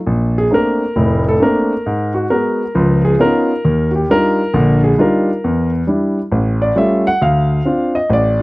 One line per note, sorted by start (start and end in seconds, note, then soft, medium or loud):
0.07 0.45 A#1 medium
0.38 0.52 G#4 medium
0.51 0.82 A3 soft
0.51 0.82 A#3 soft
0.51 0.82 C4 soft
0.51 0.83 D4 soft
0.51 1.23 A#4 medium
0.96 1.35 F1 medium
0.96 1.35 A2 medium
1.29 1.42 A4 medium
1.40 1.72 A3 medium
1.40 1.72 A#3 soft
1.40 1.72 C4 soft
1.40 1.72 D4 medium
1.40 2.12 A#4 medium
1.86 2.25 G#2 medium
2.14 2.29 F#4 medium
2.30 2.62 G#3 soft
2.30 2.62 B3 soft
2.30 2.62 F#4 medium
2.30 3.00 A#4 medium
2.75 3.14 C#2 medium
2.75 3.14 F3 medium
3.05 3.19 G#4 medium
3.19 3.50 B3 medium
3.19 3.51 C#4 medium
3.19 3.51 D#4 medium
3.19 3.51 F4 medium
3.19 3.90 A#4 medium
3.65 4.03 D#2 medium
3.91 3.93 F#4 soft
3.95 4.09 G4 medium
4.10 4.40 G3 soft
4.10 4.40 D4 soft
4.10 4.41 D#4 soft
4.10 4.41 F4 medium
4.10 4.80 A#4 medium
4.54 4.92 A#1 medium
4.54 4.92 D3 medium
4.84 4.98 G#4 medium
4.98 5.29 G3 medium
4.98 5.29 D4 medium
4.98 5.29 D#4 medium
4.98 5.29 F4 medium
4.98 5.69 A#4 medium
5.44 5.82 E2 medium
5.87 6.18 G3 soft
5.87 6.18 D4 soft
5.87 6.18 E4 soft
6.32 6.70 A1 medium
6.62 6.76 D5 medium
6.76 7.07 G3 medium
6.76 7.07 A3 medium
6.76 7.07 C#4 soft
6.76 7.07 F4 medium
6.76 7.05 E5 medium
7.07 7.20 F#5 medium
7.21 7.59 D2 medium
7.21 7.91 F5 medium
7.65 7.96 C4 medium
7.65 7.96 D4 soft
7.65 7.96 F4 medium
7.95 8.09 D#5 medium
8.10 8.42 A1 medium
8.10 8.39 D5 medium